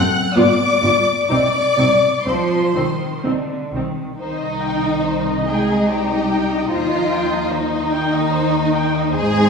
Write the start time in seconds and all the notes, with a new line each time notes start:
Already playing: F#5 F#6
0.36 G1 G2 B3 F4 D5 D6
0.82 G1 G2 B3 F4
1.29 C2 C3 C4 D#4 D5 D6
1.77 C2 C3 C4 D#4
2.26 C2 F3 C4 D#4 C5 C6
2.75 C2 D#3 C4 D#4
3.24 C2 D3 C4 D#4
3.72 C2 D#3 C4
3.76 D#4
4.18 C2 D#3 D#4 C5 D#5
4.43 D#5
4.65 G5
4.86 D#5
5.06 C5
5.28 D#5
5.49 G#3 G#4 G5
5.69 D#5
5.90 G3 G4 C5
6.12 D#5
6.32 G5
6.52 D#5
6.70 D#2 F3 F4 C5
6.91 D#5
7.13 G5
7.33 D#5
7.50 D#3 D#4 C5
7.73 D#5
7.94 G5
8.14 D#5
8.33 C5
8.53 D#5
8.74 G5
8.98 D#5
9.18 G#1 G#3 D#4 G#4 C5 D#5